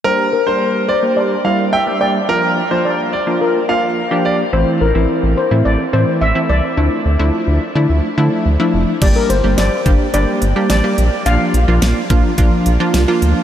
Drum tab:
CC |--------|--------|--------|--------|
HH |--------|--------|--------|--------|
SD |--------|--------|--------|--------|
BD |--------|--------|--------|--------|

CC |x-------|--------|
HH |xxxxxxxx|xxxxxxxx|
SD |--o---o-|--o---o-|
BD |o--o----|---oo---|